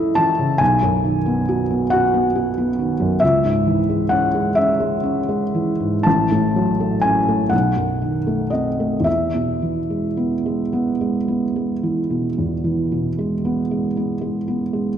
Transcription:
0.00 0.53 C#2 soft
0.00 0.39 C#3 soft
0.00 0.18 E3 soft
0.00 0.63 E4 soft
0.00 0.63 A4 soft
0.00 0.62 D#5 medium
0.00 0.16 E5 medium
0.15 0.52 E3 soft
0.15 0.59 A5 medium
0.39 0.61 C#3 soft
0.58 3.18 B1 soft
0.58 1.91 G#5 medium
0.82 1.17 F#2 soft
1.04 1.39 D#3 soft
1.26 1.61 B3 soft
1.49 1.83 F#4 soft
1.70 2.05 B3 soft
1.90 2.27 F#4 soft
1.90 3.21 F#5 medium
2.14 2.48 B3 soft
2.35 2.70 F#4 soft
2.58 2.92 B3 soft
2.79 3.14 D#3 soft
3.00 3.22 F#2 soft
3.20 6.02 C#2 soft
3.20 4.11 E5 medium
3.45 3.80 G#2 soft
3.67 4.03 E3 soft
3.89 4.25 G#3 soft
4.09 4.48 C#4 soft
4.09 4.56 F#5 medium
4.35 4.71 G#3 soft
4.55 4.95 C#4 soft
4.55 6.05 E5 medium
4.80 5.19 G#3 soft
5.03 5.44 C#4 soft
5.29 5.70 G#3 soft
5.55 5.96 E3 soft
5.80 6.06 G#2 soft
6.03 7.49 A1 soft
6.03 7.03 A5 medium
6.31 6.71 A2 soft
6.56 6.95 F#3 soft
6.80 7.19 A3 soft
7.01 7.43 C#4 soft
7.01 7.51 G#5 medium
7.28 7.53 A3 soft
7.49 9.02 B1 soft
7.49 8.51 F#5 medium
7.77 8.17 F#2 soft
8.02 8.42 D#3 soft
8.27 8.68 A3 soft
8.50 8.95 C4 soft
8.50 9.05 D#5 medium
8.80 9.06 A3 soft
9.00 12.29 E2 soft
9.04 14.98 E5 medium
9.35 9.79 B2 soft
9.62 10.06 E3 soft
9.90 10.34 G#3 soft
10.17 10.61 B3 soft
10.46 10.89 G#3 soft
10.73 11.16 B3 soft
11.01 11.44 G#3 soft
11.28 11.71 B3 soft
11.56 11.99 G#3 soft
11.83 12.26 E3 soft
12.10 12.53 B2 soft
12.38 14.98 E2 soft
12.64 13.07 E3 soft
12.92 13.34 B2 soft
13.19 13.61 G#3 soft
13.45 13.87 B3 soft
13.71 14.12 G#3 soft
13.97 14.38 B3 soft
14.21 14.63 G#3 soft
14.48 14.89 B3 soft
14.73 14.98 G#3 soft

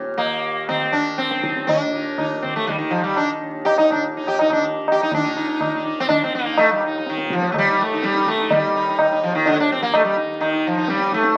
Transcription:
0.00 1.32 D#2 medium
0.00 1.82 A#2 medium
0.00 0.23 D#3 medium
0.17 0.68 A#3 medium
0.17 tabla na medium
0.23 0.79 D#3 medium
0.69 0.95 C4 medium
0.69 tabla na medium
0.69 tabla ge medium
0.79 2.36 D#3 medium
0.92 1.19 D4 medium
0.92 tabla ge soft
1.18 1.70 C4 medium
1.18 tabla te medium
1.31 3.41 D#2 medium
1.31 tabla te medium
1.43 1.66 D#4 soft
1.43 tabla ke medium
1.57 tabla te medium
1.67 2.38 D4 loud
1.67 tabla tin medium
1.67 tabla ge medium
1.83 3.94 A#2 medium
1.95 2.17 D#4 soft
2.18 2.42 D#4 soft
2.18 tabla na medium
2.18 tabla ge medium
2.36 2.90 D#3 medium
2.42 2.55 C4 medium
2.42 tabla ge medium
2.56 2.67 A3 medium
2.67 2.78 G3 medium
2.67 tabla tin medium
2.67 tabla ge medium
2.79 2.92 D#3 medium
2.90 4.47 D#3 medium
2.90 3.03 F3 medium
2.90 tabla na medium
3.04 3.17 G3 medium
3.16 3.29 D4 medium
3.16 tabla na medium
3.42 6.67 D#2 medium
3.65 3.78 G4 loud
3.65 tabla na medium
3.78 3.91 D#4 medium
3.78 tabla na medium
3.90 5.14 A#2 medium
3.90 4.03 D4 medium
3.90 tabla na medium
3.90 tabla ge medium
4.17 4.39 D#4 soft
4.27 4.40 G4 medium
4.27 tabla na medium
4.39 4.52 D#4 medium
4.39 tabla na medium
4.47 4.98 D#3 medium
4.47 tabla na medium
4.47 tabla ge medium
4.53 4.64 D4 medium
4.88 5.02 G4 medium
4.88 tabla na medium
4.98 5.65 D#3 soft
4.98 tabla na medium
5.03 5.14 D#4 medium
5.12 7.20 A#2 medium
5.12 5.83 D4 medium
5.12 tabla tin loud
5.12 tabla ge medium
5.24 5.35 D#4 soft
5.37 5.47 D#4 soft
5.48 5.60 D#4 soft
5.61 5.73 D#4 soft
5.61 tabla na medium
5.61 tabla ge medium
5.65 6.16 D#3 medium
5.74 5.84 D#4 soft
5.86 6.08 D#4 soft
6.00 6.08 C4 loud
6.09 6.22 D4 loud
6.09 tabla tin medium
6.09 tabla ge medium
6.16 7.71 D#3 medium
6.24 6.34 C4 medium
6.35 6.59 A#3 medium
6.45 6.68 D#4 soft
6.57 6.71 A3 loud
6.57 tabla na medium
6.68 8.73 D#2 medium
6.68 6.82 G3 medium
6.81 tabla na medium
6.86 6.97 D#4 soft
6.98 7.19 D#4 soft
7.06 7.33 D#3 medium
7.06 tabla te medium
7.18 9.23 A#2 medium
7.18 tabla te medium
7.30 7.51 F3 medium
7.30 tabla ke medium
7.42 tabla te medium
7.52 7.56 A3 medium
7.52 tabla na medium
7.52 tabla ge medium
7.58 7.81 G3 loud
7.70 8.21 D#3 medium
7.70 7.91 D#4 soft
7.78 8.05 A3 medium
7.78 tabla ge medium
7.93 8.14 D#4 soft
8.03 8.28 G3 medium
8.03 tabla te medium
8.14 8.38 D#4 soft
8.14 tabla te medium
8.21 9.74 D#3 medium
8.26 8.52 A3 medium
8.26 tabla ke medium
8.38 8.62 D#4 soft
8.38 tabla te medium
8.51 9.23 G3 medium
8.51 tabla tin loud
8.51 tabla ge loud
8.73 10.73 D#2 medium
8.73 8.88 D#4 soft
8.89 8.98 D#4 soft
8.99 9.10 D#4 soft
8.99 tabla na medium
8.99 tabla ge medium
9.11 9.33 D#4 soft
9.23 11.23 A#2 medium
9.23 9.35 F3 medium
9.35 9.47 D#3 loud
9.46 9.58 D3 loud
9.46 tabla tin medium
9.46 tabla ge medium
9.60 9.71 D4 loud
9.72 10.24 D#3 medium
9.72 9.82 C4 loud
9.82 9.94 A#3 loud
9.94 10.04 A3 loud
9.94 tabla na medium
10.05 10.16 G3 medium
10.16 10.38 D#4 soft
10.24 11.37 D#3 medium
10.41 10.65 D#3 medium
10.41 tabla na medium
10.53 10.74 D#4 soft
10.67 10.89 F3 medium
10.74 11.37 D#2 medium
10.74 10.98 D#4 soft
10.88 11.13 G3 medium
10.88 tabla te medium
10.99 11.22 D#4 soft
10.99 tabla te medium
11.12 11.36 A3 medium
11.12 tabla ke medium
11.23 11.37 A#2 medium
11.23 tabla te medium

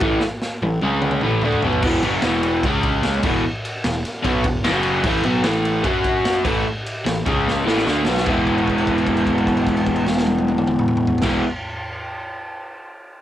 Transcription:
0.00 0.20 A1 loud
0.00 0.21 A2 loud
0.00 0.21 E3 loud
0.00 0.22 A3 loud
0.00 kick loud
0.00 ride medium
0.20 snare medium
0.42 snare medium
0.62 0.81 A1 medium
0.62 0.79 A2 medium
0.62 0.79 E3 medium
0.62 high tom medium
0.82 1.20 C#2 medium
0.82 1.22 C#3 medium
0.82 1.22 G#3 medium
0.82 1.22 C#4 loud
0.82 high tom medium
1.02 mid tom medium
1.11 mid tom medium
1.21 1.41 A1 medium
1.21 1.42 A2 loud
1.21 1.43 E3 loud
1.21 1.43 A3 loud
1.21 mid tom loud
1.31 mid tom medium
1.42 1.61 D2 loud
1.42 1.63 D3 loud
1.42 1.63 A3 loud
1.42 1.63 D4 loud
1.42 mid tom loud
1.52 floor tom medium
1.62 1.81 B1 loud
1.62 1.82 B2 medium
1.62 1.83 F#3 loud
1.62 1.84 B3 loud
1.62 floor tom loud
1.73 floor tom loud
1.82 2.01 E1 medium
1.82 2.03 E2 medium
1.82 2.03 B2 loud
1.82 2.03 E3 loud
1.82 kick loud
1.82 crash loud
2.03 2.21 F#1 loud
2.03 2.22 F#2 medium
2.03 2.23 C#3 loud
2.03 2.23 F#3 loud
2.03 ride medium
2.22 2.60 E1 loud
2.22 2.63 E2 loud
2.22 2.63 B2 medium
2.22 2.63 E3 loud
2.22 snare loud
2.22 ride loud
2.43 ride medium
2.63 3.19 C#2 loud
2.63 3.24 C#3 medium
2.63 3.24 G#3 medium
2.63 3.24 C#4 loud
2.63 kick medium
2.63 ride loud
2.83 kick loud
2.83 ride medium
3.03 snare loud
3.03 ride loud
3.23 3.42 E1 loud
3.23 3.43 E2 loud
3.23 3.43 B2 loud
3.23 3.44 E3 loud
3.23 kick loud
3.23 crash loud
3.65 ride medium
3.84 4.03 E1 medium
3.84 4.01 E2 medium
3.84 4.01 B2 medium
3.84 snare loud
3.84 ride loud
4.05 snare soft
4.05 ride medium
4.22 4.43 B1 loud
4.22 4.43 B2 medium
4.22 4.43 F#3 medium
4.22 4.44 B3 loud
4.22 kick medium
4.22 ride loud
4.44 4.62 E1 medium
4.44 4.64 E2 medium
4.44 4.61 B2 medium
4.44 kick loud
4.44 ride medium
4.63 5.01 F#1 loud
4.63 5.04 F#2 loud
4.63 5.04 C#3 loud
4.63 5.05 F#3 loud
4.63 snare loud
4.63 ride loud
4.83 ride medium
5.04 5.21 A1 loud
5.04 5.24 A2 loud
5.04 5.25 E3 loud
5.04 5.25 A3 loud
5.04 kick loud
5.04 crash loud
5.22 5.42 B1 medium
5.22 5.43 B2 loud
5.22 5.44 F#3 loud
5.22 5.44 B3 loud
5.22 ride medium
5.44 5.82 A1 medium
5.44 5.83 A2 medium
5.44 5.84 E3 loud
5.44 5.84 A3 loud
5.44 snare loud
5.44 ride loud
5.65 ride medium
5.84 6.41 F#2 loud
5.84 6.44 F#3 medium
5.84 6.44 C#4 medium
5.84 6.45 F#4 loud
5.84 kick medium
5.84 ride loud
6.04 kick medium
6.04 ride medium
6.25 snare loud
6.25 ride loud
6.44 6.63 A1 loud
6.44 6.64 A2 loud
6.44 6.65 E3 loud
6.44 6.65 A3 loud
6.44 kick loud
6.44 crash loud
6.86 ride medium
7.05 7.24 A1 medium
7.05 7.22 A2 medium
7.05 7.21 E3 medium
7.05 snare loud
7.05 ride loud
7.25 7.64 C#2 medium
7.25 7.64 C#3 medium
7.25 7.65 G#3 medium
7.25 7.66 C#4 loud
7.25 kick loud
7.25 ride medium
7.48 snare medium
7.64 7.84 A1 loud
7.64 7.85 A2 loud
7.64 7.85 E3 loud
7.64 7.85 A3 loud
7.64 snare medium
7.77 snare medium
7.85 8.05 D2 medium
7.85 8.05 D3 loud
7.85 8.06 A3 loud
7.85 8.06 D4 loud
7.85 snare medium
8.05 8.25 B1 loud
8.05 8.25 B2 medium
8.05 8.26 F#3 loud
8.05 8.27 B3 loud
8.05 snare loud
8.17 snare loud
8.25 11.16 E1 medium
8.25 11.22 E3 loud
8.25 11.24 G#3 loud
8.25 11.25 B3 loud
8.25 kick loud
8.25 crash medium
8.30 11.26 E4 loud
8.47 kick medium
8.47 crash soft
8.58 crash soft
8.67 kick medium
8.67 crash soft
8.78 crash medium
8.87 kick medium
8.87 crash soft
8.98 crash soft
9.07 kick medium
9.07 crash medium
9.17 crash medium
9.27 kick medium
9.27 crash medium
9.38 crash soft
9.47 kick medium
9.47 crash medium
9.57 crash medium
9.67 kick medium
9.67 crash medium
9.77 crash medium
9.86 kick medium
9.86 crash medium
9.96 crash medium
10.07 snare medium
10.17 snare medium
10.27 high tom loud
10.38 high tom loud
10.48 high tom loud
10.58 mid tom loud
10.67 mid tom loud
10.79 mid tom loud
10.88 mid tom loud
10.97 mid tom loud
11.07 floor tom loud
11.18 snare loud
11.18 floor tom medium
11.18 crash loud
11.23 11.41 E1 loud
11.23 11.42 E3 medium
11.23 11.43 G#3 loud
11.23 11.43 B3 loud
11.23 11.44 E4 loud
11.23 kick loud

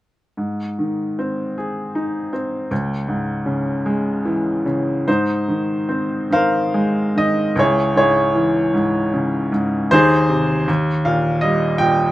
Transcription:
0.37 2.67 G#2 soft
0.79 2.30 D#3 soft
1.19 2.31 C4 soft
1.58 2.68 G#4 soft
1.95 2.69 D#4 soft
2.33 2.70 C4 soft
2.71 5.03 C#2 medium
3.08 4.62 G#2 soft
3.46 4.64 C#3 soft
3.86 5.04 G#3 medium
4.25 5.05 E3 soft
4.66 5.06 C#3 soft
5.07 7.53 G#2 soft
5.07 6.28 D#4 soft
5.07 6.31 C5 medium
5.48 6.29 D#3 soft
5.89 7.53 C4 soft
6.31 7.14 D#3 soft
6.31 7.54 A#4 medium
6.31 7.54 C5 medium
6.31 7.20 F5 medium
6.74 7.54 G#3 soft
7.15 7.55 D#3 soft
7.15 7.59 D#5 medium
7.56 9.87 C#2 medium
7.56 7.96 G#4 medium
7.56 7.96 C#5 medium
7.60 7.97 E4 medium
7.95 8.72 G#2 soft
7.95 9.51 E4 medium
7.95 9.50 G#4 medium
7.95 9.50 C#5 medium
8.35 9.88 E3 medium
8.74 9.51 G#2 soft
9.14 9.89 C#3 soft
9.52 9.90 G#2 soft
9.91 10.65 D#2 medium
9.91 10.65 D#4 medium
9.91 10.65 G#4 medium
9.91 10.64 C5 medium
10.29 10.67 C3 soft
10.68 12.12 D#2 medium
11.05 11.79 A#2 soft
11.05 11.44 F5 medium
11.41 12.12 G3 medium
11.41 11.81 D#5 medium
11.78 12.12 A#2 soft
11.78 12.12 G5 medium

